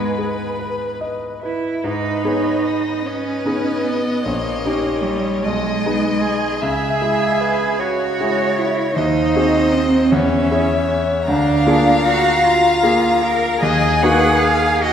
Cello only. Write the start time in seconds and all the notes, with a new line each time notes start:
Already playing: G#3
1.41 E4
1.84 D#4
3.06 C#4
3.84 B3
4.23 A#3
5.01 G3
5.42 G#3
6.21 G#4
6.60 G#4
7.80 F#4
8.58 E4
8.94 D#4
9.73 C4
10.11 C#4
11.26 D4
12.05 F#4
12.44 F4
13.22 A#4
13.61 G#4
14.83 F#4